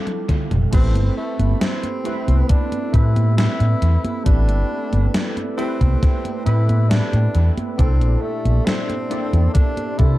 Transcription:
Already playing: synth keys G3 C4 E4 F4 A4, ambient pad A4 G5 D6
0.07 closed hi-hat, high tom
0.29 kick, closed hi-hat, mid tom
0.51 fingered electric bass F1, closed hi-hat, mid tom
0.71 fingered electric bass A1, synth keys A3 C4 E4 G4 B4, ambient pad C4 A4 G5 B5, tenor saxophone C4, kick, closed hi-hat, crash, high conga
0.95 fingered electric bass G1, closed hi-hat, high conga
1.17 tenor saxophone A3
1.39 fingered electric bass G1, closed hi-hat, high conga
1.61 tenor saxophone C4, snare, closed hi-hat, high conga
1.83 closed hi-hat, high conga
2.04 synth keys A3 C4 E4 G4 B4, closed hi-hat
2.28 fingered electric bass C2, closed hi-hat, high conga
2.49 tenor saxophone D4, kick, closed hi-hat, high conga
2.72 closed hi-hat, high conga
2.92 fingered electric bass A2, synth keys A3 C4 E4 G4 B4, tenor saxophone E4, kick, closed hi-hat
3.16 closed hi-hat, high conga
3.37 tenor saxophone E4, snare, closed hi-hat, high conga
3.60 fingered electric bass A2, closed hi-hat, high conga
3.82 fingered electric bass E2, closed hi-hat
4.05 closed hi-hat, high conga
4.24 fingered electric bass A1, synth keys A3 C4 E4 G4 B4, tenor saxophone D4, kick, closed hi-hat, high conga
4.49 fingered electric bass G1, closed hi-hat, high conga
4.93 fingered electric bass G1, closed hi-hat, high conga
5.14 snare, closed hi-hat, high conga
5.37 closed hi-hat, high conga
5.57 synth keys A3 C4 E4 G4 B4, tenor saxophone C4, closed hi-hat
5.81 fingered electric bass C2, kick, closed hi-hat, high conga
6.03 kick, snare, closed hi-hat, high conga
6.25 closed hi-hat, high conga
6.45 fingered electric bass A2, synth keys A3 C4 E4 G4 B4, tenor saxophone E4, closed hi-hat
6.69 closed hi-hat, high conga
6.89 tenor saxophone D4, snare, closed hi-hat, high conga
7.13 fingered electric bass A2, closed hi-hat, high conga
7.35 fingered electric bass E2, closed hi-hat
7.58 closed hi-hat, high conga
7.77 fingered electric bass C2, synth keys A#2 D4 E4 G4 A4, tenor saxophone C4, ambient pad D5 E5, kick, closed hi-hat, high conga
8.01 fingered electric bass A#1, closed hi-hat, high conga
8.22 tenor saxophone A3
8.45 fingered electric bass A#1, closed hi-hat, high conga
8.66 tenor saxophone C4, snare, closed hi-hat, high conga
8.90 closed hi-hat, high conga
9.10 synth keys A#3 D4 E4 G4 A4, closed hi-hat
9.33 fingered electric bass E2, closed hi-hat, high conga
9.54 tenor saxophone D4, ambient pad C6, kick, closed hi-hat, high conga
9.77 closed hi-hat, high conga
9.97 fingered electric bass C3, synth keys A#3 D4 E4 G4 A4, tenor saxophone E4, kick, closed hi-hat

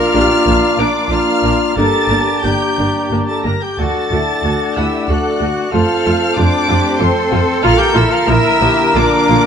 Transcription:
Already playing: french horn section A#3 D4, clarinet F4, cello section A#4, oboe D5, violin section F5 F6, flute A#5
0.14 double bass section A#1, viola section A#3 D4, cello section G4
0.46 double bass section A#1, viola section A#3 D4, cello section F4
0.78 double bass section A#1, viola section A#3 D4, clarinet D4, violin section D5 D6
1.10 double bass section A#1, viola section A#3 D4, french horn section A#3 D4, clarinet F4, oboe D5, violin section F5 F6, flute A#5
1.43 double bass section A#1, viola section A#3 D4
1.77 double bass section G1, viola section A#3 D4, french horn section A#3 D4, cello section G4, clarinet A4, oboe D5, violin section A5 A6, flute A#5
2.10 double bass section G1, viola section A#3 D4
2.43 double bass section G1, french horn section A#3 D4, viola section A#3 D4, clarinet G4, oboe D5, violin section G5 G6, flute A#5
2.77 double bass section G1, viola section A#3 D4
3.11 double bass section G1, viola section A#3 D4
3.27 clarinet A4, violin section A5 A6
3.44 double bass section G1, viola section A#3 D4, clarinet A#4, violin section A#5 A#6
3.61 clarinet G4, violin section G5 G6
3.78 double bass section D2, viola section A3 F#4, french horn section A3 D4, cello section F#4, clarinet A4, oboe D5, flute F#5, violin section A5 A6
4.11 double bass section D2, viola section A3 F#4, cello section E4
4.44 double bass section D2, viola section A3 F#4, cello section F#4
4.76 double bass section D2, viola section A3 F#5, clarinet E4, cello section G4, violin section E5 E6
5.08 double bass section D2, viola section A3 F#4, clarinet F#4, cello section A4, violin section F#5 F#6
5.39 double bass section D2, viola section A3 F#4, cello section F#4
5.71 double bass section F2, french horn section A3 C4, viola section A3 F4, clarinet F4, cello section A4, oboe C5, violin section F5 F6, flute A5
6.05 double bass section F2, viola section A3 F4
6.36 double bass section F2, viola section A3 F4, clarinet D4, cello section F4, violin section D5 D6
6.68 double bass section F2, viola section A3 F4, cello section G4
6.99 double bass section F2, viola section A3 F4, clarinet C4, cello section A4, violin section C5 C6
7.31 double bass section F2, viola section A3 F4
7.62 double bass section A#1, french horn section D3 A#3, viola section A#3 F4, clarinet F4, oboe A#4, violin section F5 F6, flute A#5
7.78 clarinet G4, violin section G5 G6
7.94 double bass section A#1, viola section A#3 F4, clarinet E4, violin section E5 E6
8.11 clarinet F4, violin section F5 F6
8.26 double bass section A#1, viola section F3 A#3, clarinet E4, cello section A#4, violin section E5 E6
8.60 double bass section A#1, viola section F3 A#3, cello section G4
8.94 double bass section A#1, viola section A#3 F4, clarinet D4, cello section F4, violin section D5 D6
9.29 double bass section A#1, viola section A#3 F4

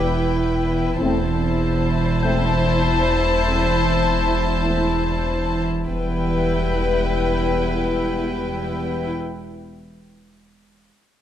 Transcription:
Already playing: double bass section E1, sub bass E1, cello section E2, viola section E4, violin section B4 G5, celesta G5 D6 F#6 A6
1.00 double bass section E1, sub bass E1, cello section E2, french horn section A3 C4, viola section E4, violin section C5 A5
2.22 french horn section A3 C4, celesta G6
3.45 french horn section A3 C4
4.64 french horn section A3 C4
4.98 celesta E6
5.87 sub bass E1, double bass section E1, cello section E2, french horn section G3 B3, viola section E4, violin section B4 G5

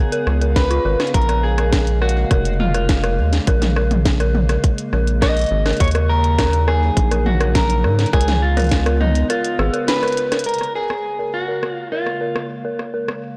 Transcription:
Already playing: ambient pad C#3 G#3 B3 F5, clean electric guitar G#4
0.12 synth bell A#4, closed hi-hat
0.27 analog synth bass C#2, cross-stick
0.41 synth bell A#4, closed hi-hat
0.56 synth bell A#4, clean electric guitar B4, kick, snare, closed hi-hat
0.71 synth bell F4, cross-stick, closed hi-hat
0.85 analog synth bass G#1, synth bell A#4
1.00 cross-stick, snare, closed hi-hat
1.07 closed hi-hat
1.14 analog synth bass A#1, ambient pad A#3, clean electric guitar A#4, kick, closed hi-hat
1.22 closed hi-hat
1.29 synth bell A#4, cross-stick, closed hi-hat
1.43 clean electric guitar G#4
1.58 synth bell A#4, cross-stick, closed hi-hat
1.73 kick, snare, closed hi-hat
1.87 closed hi-hat
2.02 clean electric guitar F#4, synth bell A#4, cross-stick
2.09 closed hi-hat
2.31 analog synth bass F1, synth bell A#4, kick, cross-stick, closed hi-hat
2.45 closed hi-hat
2.60 clean electric guitar F4, mid tom
2.74 synth bell A#4, cross-stick, closed hi-hat
2.89 kick, snare, closed hi-hat
3.04 synth bell A#4, cross-stick, closed hi-hat
3.18 analog synth bass D#2
3.33 snare, closed hi-hat
3.47 analog synth bass A#1, synth bell A#4, kick, cross-stick, closed hi-hat
3.62 snare, closed hi-hat, mid tom
3.76 synth bell A#4, cross-stick
3.91 closed hi-hat, mid tom
4.05 kick, snare, closed hi-hat
4.20 synth bell A#4, cross-stick, closed hi-hat
4.35 mid tom
4.49 synth bell A#4, cross-stick, closed hi-hat
4.64 kick, closed hi-hat
4.78 closed hi-hat
4.93 analog synth bass A#1, synth bell A#4, cross-stick
5.07 closed hi-hat
5.22 synth bell A#4, clean electric guitar D#5, kick, cross-stick, snare, closed hi-hat
5.37 closed hi-hat
5.39 closed hi-hat
5.41 closed hi-hat
5.44 closed hi-hat
5.46 closed hi-hat
5.49 analog synth bass G#1, closed hi-hat
5.66 synth bell A#4, cross-stick, snare, closed hi-hat
5.69 closed hi-hat
5.73 closed hi-hat
5.77 analog synth bass D#2, ambient pad F#3 D#4, kick, closed hi-hat
5.80 clean electric guitar C#5, closed hi-hat
5.84 closed hi-hat
5.88 closed hi-hat
5.91 synth bell A#4, cross-stick, closed hi-hat
5.95 closed hi-hat
6.09 clean electric guitar A#4
6.24 closed hi-hat
6.38 synth bell A#4, kick, cross-stick, snare, closed hi-hat
6.42 cross-stick
6.46 cross-stick
6.50 cross-stick, closed hi-hat
6.68 clean electric guitar G#4, synth bell A#4, cross-stick
6.97 analog synth bass A#1, kick, closed hi-hat
7.11 synth bell A#4, cross-stick, closed hi-hat
7.26 clean electric guitar F#4, mid tom
7.40 synth bell A#4, cross-stick, closed hi-hat
7.55 clean electric guitar A#4, kick, snare, closed hi-hat
7.70 closed hi-hat
7.84 analog synth bass G#2, synth bell A#4, cross-stick
7.99 snare, closed hi-hat
8.06 closed hi-hat
8.13 analog synth bass C#2, ambient pad G#3 B3 F4, clean electric guitar G#4, synth bell A#4, kick, cross-stick, closed hi-hat
8.21 closed hi-hat
8.28 snare, closed hi-hat, mid tom
8.42 clean electric guitar F4
8.57 synth bell A#4, cross-stick, closed hi-hat, mid tom
8.60 closed hi-hat
8.64 closed hi-hat
8.67 closed hi-hat
8.69 snare, closed hi-hat
8.72 kick, closed hi-hat
8.86 synth bell A#4, cross-stick, closed hi-hat
9.01 clean electric guitar D#4, mid tom
9.15 closed hi-hat
9.30 clean electric guitar F4, synth bell A#4, cross-stick, closed hi-hat
9.45 closed hi-hat
9.59 analog synth bass G#1, synth bell G#4, cross-stick
9.73 synth bell A#4, closed hi-hat
9.88 clean electric guitar B4, snare, closed hi-hat
10.03 synth bell A#4, cross-stick, closed hi-hat
10.08 closed hi-hat
10.12 closed hi-hat
10.17 closed hi-hat
10.32 synth bell A#4, cross-stick, snare, closed hi-hat
10.39 closed hi-hat
10.44 ambient pad C#3 G#3 A#3 F5, synth bell A#4, clean electric guitar A#4, closed hi-hat
10.49 closed hi-hat
10.54 closed hi-hat
10.59 cross-stick, closed hi-hat
10.63 closed hi-hat
10.75 clean electric guitar G#4, synth bell A#4
10.90 cross-stick
11.19 synth bell A#4
11.34 clean electric guitar F#4
11.48 synth bell A#4
11.63 cross-stick
11.73 clean electric guitar F4
11.92 clean electric guitar F4, synth bell A#4
12.07 cross-stick
12.21 synth bell A#4
12.36 cross-stick
12.65 synth bell A#4
12.79 cross-stick
12.94 synth bell A#4
13.08 cross-stick

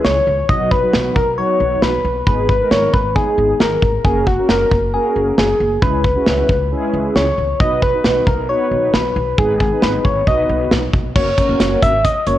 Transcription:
Already playing: analog polysynth G#3 C#4 E4 G#4
0.05 upright bass C#2, soft synth lead C#5, snare
0.27 upright bass C#2
0.49 upright bass B1, analog polysynth F#3 B3 D#4 F#4, soft synth lead D#5, kick
0.71 soft synth lead B4, kick
0.82 analog polysynth F#3 B3 D#4 F#4
0.93 upright bass B1, snare
1.16 upright bass B1, soft synth lead A#4, kick
1.38 analog polysynth F#3 B3 D#4 F#4, soft synth lead C#5
1.60 upright bass B1
1.82 upright bass B1, soft synth lead B4, snare
2.05 upright bass B1
2.27 upright bass G#1, analog polysynth G#3 B3 D#4 G#4, soft synth lead B4, kick
2.49 soft synth lead B4, kick
2.60 analog polysynth G#3 B3 D#4 A#4
2.71 upright bass G#1, soft synth lead C#5, snare
2.93 upright bass G#1, soft synth lead B4, kick
3.16 analog polysynth G#3 B3 D#4 G#4, soft synth lead G#4, kick
3.38 upright bass G#1
3.60 upright bass G#1, soft synth lead A#4, snare
3.82 upright bass G#1, kick
4.05 upright bass F#1, analog polysynth A#3 C#4 F#4 A#4, soft synth lead G#4, kick
4.27 soft synth lead F#4, kick
4.38 analog polysynth A#3 C#4 F#4 A#4
4.49 upright bass F#1, soft synth lead A#4, snare
4.71 upright bass F#1, kick
4.94 analog polysynth A#3 C#4 F#4 A#4, soft synth lead G#4
5.16 upright bass F#1
5.38 upright bass F#1, soft synth lead G#4, snare
5.60 upright bass F#1
5.82 upright bass C#2, analog polysynth G#3 C#4 E4 G#4, soft synth lead B4, kick
6.05 kick
6.16 analog polysynth G#3 C#4 E4 F#4
6.27 upright bass C#2, snare
6.49 upright bass C#2, kick
6.71 analog polysynth G#3 C#4 E4 G#4
6.94 upright bass C#2
7.16 upright bass C#2, soft synth lead C#5, snare
7.38 upright bass C#2
7.60 upright bass B1, analog polysynth B3 D#4 F#4 B4, soft synth lead D#5, kick
7.82 soft synth lead B4, kick
7.94 analog polysynth B3 D#4 F#4 B4
8.05 upright bass B1, snare
8.27 upright bass B1, soft synth lead A#4, kick
8.49 analog polysynth B3 D#4 F#4 B4, soft synth lead C#5
8.71 upright bass B1
8.94 upright bass B1, soft synth lead B4, snare
9.16 upright bass B1
9.38 upright bass G#1, analog polysynth B3 D#4 G#4 B4, soft synth lead G#4, kick
9.60 soft synth lead G#4, kick
9.71 analog polysynth B3 D#4 G#4 B4
9.82 upright bass G#1, soft synth lead B4, snare
10.05 upright bass G#1, soft synth lead C#5, kick
10.27 upright bass B1, analog polysynth B3 D#4 F#4 B4, soft synth lead D#5, kick
10.49 upright bass B1
10.71 upright bass B1, snare
10.94 upright bass B1, kick
11.16 upright bass F#1, analog polysynth A#3 C#4 F#4 A#4, soft synth lead C#5, kick, crash
11.38 analog polysynth A#3 C#4 F#4 A#4, kick, closed hi-hat
11.49 upright bass F#1
11.60 upright bass F#1, snare, closed hi-hat
11.82 upright bass G#1, soft synth lead E5, kick, closed hi-hat
12.05 soft synth lead D#5, kick, closed hi-hat
12.27 upright bass F#1, analog polysynth A#3 C#4 F#4 A#4, soft synth lead C#5, closed hi-hat

